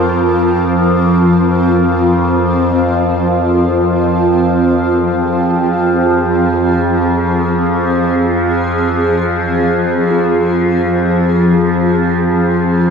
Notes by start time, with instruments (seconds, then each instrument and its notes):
Already playing: synth drone F2 F3, ambient pad F3 C4 F4 A#4, singing bowl G5
2.71 synth drone F2 F3, bronze metallophone F3
4.50 ambient pad G#4
5.95 bronze metallophone G#4
10.10 singing bowl F4